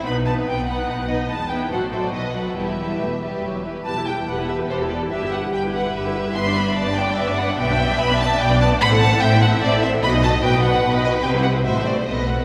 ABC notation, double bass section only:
X:1
M:3/4
L:1/8
Q:1/4=145
K:Em
V:1 name="Double bass section" clef=bass
B,,,2 B,,,2 B,,,2 | E,,,2 A,,,2 B,,,2 | E,,,2 E,,,2 E,,,2 | E,,,2 E,,,2 E,,,2 |
G,,,2 G,,,2 G,,,2 | G,,,2 G,,,2 G,,,2 | B,,,2 B,,,2 B,,,2 | A,,,2 A,,,2 A,,,2 |
B,,,2 B,,,2 B,,,2 | C,,2 A,,,2 B,,,2 |]